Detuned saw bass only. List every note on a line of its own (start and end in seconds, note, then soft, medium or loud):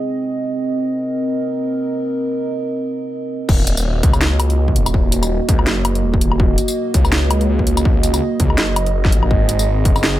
3.49 4.02 D#1 loud
4.03 4.78 C#2 medium
4.76 5.40 D#1 medium
5.49 5.66 C#2 medium
5.67 6.05 F#1 loud
6.03 6.57 D#1 medium
6.94 7.48 C#2 medium
7.49 8.21 C#2 loud
8.40 8.57 C#2 medium
8.58 9.14 F#1 medium
9.12 9.29 A#1 medium
9.31 9.84 G#1 loud
9.85 10.20 F#1 medium